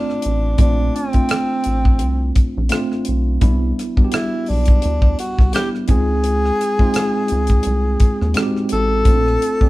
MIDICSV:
0, 0, Header, 1, 5, 480
1, 0, Start_track
1, 0, Tempo, 705882
1, 402, Time_signature, 4, 2, 24, 8
1, 6592, End_track
2, 0, Start_track
2, 0, Title_t, "Tenor saxophone"
2, 0, Program_c, 0, 66
2, 0, Note_on_c, 0, 62, 77
2, 409, Note_off_c, 0, 62, 0
2, 415, Note_on_c, 0, 62, 83
2, 652, Note_on_c, 0, 60, 83
2, 662, Note_off_c, 0, 62, 0
2, 1607, Note_off_c, 0, 60, 0
2, 2813, Note_on_c, 0, 64, 73
2, 3054, Note_on_c, 0, 62, 80
2, 3064, Note_off_c, 0, 64, 0
2, 3528, Note_off_c, 0, 62, 0
2, 3534, Note_on_c, 0, 66, 80
2, 3751, Note_off_c, 0, 66, 0
2, 3771, Note_on_c, 0, 67, 79
2, 3877, Note_off_c, 0, 67, 0
2, 4014, Note_on_c, 0, 68, 97
2, 5724, Note_off_c, 0, 68, 0
2, 5937, Note_on_c, 0, 69, 99
2, 6592, Note_off_c, 0, 69, 0
2, 6592, End_track
3, 0, Start_track
3, 0, Title_t, "Tine electric piano"
3, 0, Program_c, 1, 4
3, 0, Control_c, 1, 64, 127
3, 0, Note_on_c, 1, 57, 59
3, 0, Note_on_c, 1, 60, 58
3, 0, Note_on_c, 1, 62, 61
3, 0, Note_on_c, 1, 65, 74
3, 0, Note_on_c, 1, 74, 61
3, 361, Note_off_c, 1, 57, 0
3, 364, Note_off_c, 1, 60, 0
3, 366, Note_off_c, 1, 62, 0
3, 366, Note_off_c, 1, 65, 0
3, 395, Note_on_c, 1, 57, 70
3, 398, Note_on_c, 1, 60, 57
3, 400, Note_on_c, 1, 62, 62
3, 403, Note_on_c, 1, 65, 68
3, 739, Note_off_c, 1, 57, 0
3, 741, Note_off_c, 1, 60, 0
3, 742, Note_off_c, 1, 62, 0
3, 743, Note_off_c, 1, 65, 0
3, 773, Note_on_c, 1, 57, 63
3, 774, Note_on_c, 1, 60, 66
3, 778, Note_on_c, 1, 62, 62
3, 782, Note_on_c, 1, 65, 68
3, 1642, Note_off_c, 1, 57, 0
3, 1642, Note_off_c, 1, 60, 0
3, 1644, Note_off_c, 1, 62, 0
3, 1647, Note_off_c, 1, 65, 0
3, 1836, Note_on_c, 1, 57, 79
3, 1838, Note_on_c, 1, 60, 74
3, 1844, Note_on_c, 1, 62, 66
3, 1849, Note_on_c, 1, 65, 88
3, 2283, Note_off_c, 1, 57, 0
3, 2284, Note_off_c, 1, 60, 0
3, 2287, Note_off_c, 1, 62, 0
3, 2289, Note_off_c, 1, 65, 0
3, 2318, Note_on_c, 1, 55, 82
3, 2321, Note_on_c, 1, 59, 69
3, 2323, Note_on_c, 1, 62, 72
3, 2327, Note_on_c, 1, 64, 91
3, 2329, Control_c, 1, 64, 0
3, 2335, Note_off_c, 1, 74, 0
3, 2430, Control_c, 1, 64, 127
3, 2660, Note_off_c, 1, 55, 0
3, 2662, Note_off_c, 1, 59, 0
3, 2663, Note_off_c, 1, 62, 0
3, 2665, Note_off_c, 1, 64, 0
3, 2697, Note_on_c, 1, 55, 71
3, 2699, Note_on_c, 1, 62, 65
3, 2701, Note_on_c, 1, 59, 59
3, 2703, Note_on_c, 1, 66, 54
3, 2738, Note_off_c, 1, 66, 0
3, 2750, Note_on_c, 1, 67, 72
3, 3564, Note_off_c, 1, 55, 0
3, 3565, Note_off_c, 1, 62, 0
3, 3566, Note_off_c, 1, 59, 0
3, 3590, Note_off_c, 1, 67, 0
3, 3764, Note_on_c, 1, 55, 63
3, 3764, Note_on_c, 1, 59, 60
3, 3769, Note_on_c, 1, 62, 58
3, 3774, Note_on_c, 1, 64, 74
3, 3997, Note_on_c, 1, 56, 82
3, 4001, Note_on_c, 1, 60, 69
3, 4002, Note_on_c, 1, 63, 67
3, 4003, Note_off_c, 1, 55, 0
3, 4003, Note_off_c, 1, 59, 0
3, 4005, Note_off_c, 1, 62, 0
3, 4008, Note_off_c, 1, 64, 0
3, 4009, Note_on_c, 1, 65, 84
3, 4010, Control_c, 1, 64, 0
3, 4143, Control_c, 1, 64, 127
3, 4556, Note_off_c, 1, 56, 0
3, 4559, Note_off_c, 1, 60, 0
3, 4559, Note_off_c, 1, 63, 0
3, 4562, Note_off_c, 1, 65, 0
3, 4619, Note_on_c, 1, 56, 84
3, 4623, Note_on_c, 1, 60, 75
3, 4628, Note_on_c, 1, 63, 71
3, 4630, Note_on_c, 1, 65, 95
3, 5485, Note_off_c, 1, 56, 0
3, 5487, Note_off_c, 1, 60, 0
3, 5490, Note_off_c, 1, 63, 0
3, 5491, Note_off_c, 1, 65, 0
3, 5677, Note_on_c, 1, 60, 69
3, 5678, Note_on_c, 1, 56, 78
3, 5685, Note_on_c, 1, 63, 72
3, 5690, Note_on_c, 1, 66, 70
3, 5729, Note_on_c, 1, 67, 82
3, 5736, Note_off_c, 1, 66, 0
3, 6124, Note_off_c, 1, 56, 0
3, 6124, Note_off_c, 1, 60, 0
3, 6128, Note_off_c, 1, 63, 0
3, 6149, Note_off_c, 1, 67, 0
3, 6161, Note_on_c, 1, 57, 64
3, 6165, Note_on_c, 1, 60, 63
3, 6165, Note_on_c, 1, 62, 57
3, 6170, Control_c, 1, 64, 0
3, 6172, Note_on_c, 1, 65, 68
3, 6291, Control_c, 1, 64, 127
3, 6502, Note_off_c, 1, 57, 0
3, 6504, Note_off_c, 1, 60, 0
3, 6504, Note_off_c, 1, 62, 0
3, 6507, Note_off_c, 1, 65, 0
3, 6532, Note_on_c, 1, 57, 66
3, 6539, Note_on_c, 1, 60, 61
3, 6542, Note_on_c, 1, 74, 61
3, 6543, Note_on_c, 1, 67, 70
3, 6592, Note_off_c, 1, 57, 0
3, 6592, Note_off_c, 1, 60, 0
3, 6592, Note_off_c, 1, 67, 0
3, 6592, Note_off_c, 1, 74, 0
3, 6592, End_track
4, 0, Start_track
4, 0, Title_t, "Analog synth bass"
4, 0, Program_c, 2, 38
4, 175, Note_on_c, 2, 33, 92
4, 380, Note_off_c, 2, 33, 0
4, 405, Note_on_c, 2, 34, 98
4, 614, Note_off_c, 2, 34, 0
4, 1131, Note_on_c, 2, 33, 80
4, 1374, Note_on_c, 2, 36, 87
4, 1384, Note_off_c, 2, 33, 0
4, 1579, Note_off_c, 2, 36, 0
4, 1750, Note_on_c, 2, 34, 92
4, 1836, Note_off_c, 2, 34, 0
4, 2097, Note_on_c, 2, 35, 78
4, 2301, Note_off_c, 2, 35, 0
4, 2328, Note_on_c, 2, 36, 103
4, 2536, Note_off_c, 2, 36, 0
4, 3060, Note_on_c, 2, 35, 84
4, 3263, Note_off_c, 2, 35, 0
4, 3298, Note_on_c, 2, 38, 93
4, 3502, Note_off_c, 2, 38, 0
4, 3672, Note_on_c, 2, 36, 88
4, 3758, Note_off_c, 2, 36, 0
4, 4012, Note_on_c, 2, 37, 89
4, 4429, Note_off_c, 2, 37, 0
4, 4976, Note_on_c, 2, 37, 84
4, 5181, Note_off_c, 2, 37, 0
4, 5212, Note_on_c, 2, 36, 84
4, 5418, Note_off_c, 2, 36, 0
4, 5587, Note_on_c, 2, 39, 94
4, 5675, Note_off_c, 2, 39, 0
4, 5933, Note_on_c, 2, 33, 79
4, 6139, Note_off_c, 2, 33, 0
4, 6164, Note_on_c, 2, 34, 99
4, 6374, Note_off_c, 2, 34, 0
4, 6592, End_track
5, 0, Start_track
5, 0, Title_t, "Drums"
5, 66, Note_on_c, 9, 37, 33
5, 134, Note_off_c, 9, 37, 0
5, 152, Note_on_c, 9, 42, 63
5, 220, Note_off_c, 9, 42, 0
5, 396, Note_on_c, 9, 42, 68
5, 398, Note_on_c, 9, 36, 100
5, 464, Note_off_c, 9, 42, 0
5, 466, Note_off_c, 9, 36, 0
5, 651, Note_on_c, 9, 42, 54
5, 719, Note_off_c, 9, 42, 0
5, 769, Note_on_c, 9, 42, 41
5, 778, Note_on_c, 9, 36, 73
5, 837, Note_off_c, 9, 42, 0
5, 846, Note_off_c, 9, 36, 0
5, 876, Note_on_c, 9, 42, 77
5, 892, Note_on_c, 9, 37, 114
5, 944, Note_off_c, 9, 42, 0
5, 960, Note_off_c, 9, 37, 0
5, 1114, Note_on_c, 9, 42, 57
5, 1182, Note_off_c, 9, 42, 0
5, 1259, Note_on_c, 9, 36, 80
5, 1327, Note_off_c, 9, 36, 0
5, 1354, Note_on_c, 9, 42, 71
5, 1422, Note_off_c, 9, 42, 0
5, 1602, Note_on_c, 9, 42, 70
5, 1605, Note_on_c, 9, 36, 91
5, 1670, Note_off_c, 9, 42, 0
5, 1673, Note_off_c, 9, 36, 0
5, 1831, Note_on_c, 9, 42, 77
5, 1850, Note_on_c, 9, 37, 103
5, 1899, Note_off_c, 9, 42, 0
5, 1918, Note_off_c, 9, 37, 0
5, 1984, Note_on_c, 9, 37, 33
5, 2052, Note_off_c, 9, 37, 0
5, 2073, Note_on_c, 9, 42, 68
5, 2141, Note_off_c, 9, 42, 0
5, 2321, Note_on_c, 9, 42, 68
5, 2323, Note_on_c, 9, 36, 106
5, 2389, Note_off_c, 9, 42, 0
5, 2391, Note_off_c, 9, 36, 0
5, 2578, Note_on_c, 9, 42, 56
5, 2580, Note_on_c, 9, 37, 35
5, 2646, Note_off_c, 9, 42, 0
5, 2648, Note_off_c, 9, 37, 0
5, 2701, Note_on_c, 9, 36, 84
5, 2769, Note_off_c, 9, 36, 0
5, 2799, Note_on_c, 9, 42, 77
5, 2814, Note_on_c, 9, 37, 105
5, 2867, Note_off_c, 9, 42, 0
5, 2882, Note_off_c, 9, 37, 0
5, 3035, Note_on_c, 9, 46, 36
5, 3103, Note_off_c, 9, 46, 0
5, 3165, Note_on_c, 9, 42, 53
5, 3182, Note_on_c, 9, 36, 81
5, 3233, Note_off_c, 9, 42, 0
5, 3250, Note_off_c, 9, 36, 0
5, 3278, Note_on_c, 9, 42, 62
5, 3346, Note_off_c, 9, 42, 0
5, 3413, Note_on_c, 9, 36, 100
5, 3481, Note_off_c, 9, 36, 0
5, 3528, Note_on_c, 9, 42, 73
5, 3596, Note_off_c, 9, 42, 0
5, 3662, Note_on_c, 9, 36, 89
5, 3673, Note_on_c, 9, 37, 29
5, 3730, Note_off_c, 9, 36, 0
5, 3741, Note_off_c, 9, 37, 0
5, 3761, Note_on_c, 9, 42, 75
5, 3780, Note_on_c, 9, 37, 106
5, 3829, Note_off_c, 9, 42, 0
5, 3848, Note_off_c, 9, 37, 0
5, 3909, Note_on_c, 9, 37, 33
5, 3977, Note_off_c, 9, 37, 0
5, 3996, Note_on_c, 9, 42, 63
5, 4004, Note_on_c, 9, 36, 91
5, 4064, Note_off_c, 9, 42, 0
5, 4072, Note_off_c, 9, 36, 0
5, 4241, Note_on_c, 9, 42, 70
5, 4309, Note_off_c, 9, 42, 0
5, 4390, Note_on_c, 9, 37, 30
5, 4458, Note_off_c, 9, 37, 0
5, 4494, Note_on_c, 9, 42, 53
5, 4496, Note_on_c, 9, 37, 32
5, 4562, Note_off_c, 9, 42, 0
5, 4564, Note_off_c, 9, 37, 0
5, 4619, Note_on_c, 9, 36, 79
5, 4687, Note_off_c, 9, 36, 0
5, 4718, Note_on_c, 9, 42, 76
5, 4733, Note_on_c, 9, 37, 109
5, 4786, Note_off_c, 9, 42, 0
5, 4801, Note_off_c, 9, 37, 0
5, 4953, Note_on_c, 9, 42, 59
5, 5021, Note_off_c, 9, 42, 0
5, 5080, Note_on_c, 9, 42, 51
5, 5098, Note_on_c, 9, 36, 83
5, 5148, Note_off_c, 9, 42, 0
5, 5166, Note_off_c, 9, 36, 0
5, 5188, Note_on_c, 9, 42, 74
5, 5256, Note_off_c, 9, 42, 0
5, 5438, Note_on_c, 9, 42, 73
5, 5442, Note_on_c, 9, 36, 100
5, 5506, Note_off_c, 9, 42, 0
5, 5510, Note_off_c, 9, 36, 0
5, 5586, Note_on_c, 9, 37, 29
5, 5654, Note_off_c, 9, 37, 0
5, 5673, Note_on_c, 9, 42, 75
5, 5692, Note_on_c, 9, 37, 105
5, 5741, Note_off_c, 9, 42, 0
5, 5760, Note_off_c, 9, 37, 0
5, 5824, Note_on_c, 9, 37, 34
5, 5892, Note_off_c, 9, 37, 0
5, 5910, Note_on_c, 9, 42, 65
5, 5978, Note_off_c, 9, 42, 0
5, 6155, Note_on_c, 9, 42, 74
5, 6156, Note_on_c, 9, 36, 96
5, 6223, Note_off_c, 9, 42, 0
5, 6224, Note_off_c, 9, 36, 0
5, 6305, Note_on_c, 9, 37, 33
5, 6373, Note_off_c, 9, 37, 0
5, 6406, Note_on_c, 9, 42, 59
5, 6474, Note_off_c, 9, 42, 0
5, 6534, Note_on_c, 9, 36, 84
5, 6592, Note_off_c, 9, 36, 0
5, 6592, End_track
0, 0, End_of_file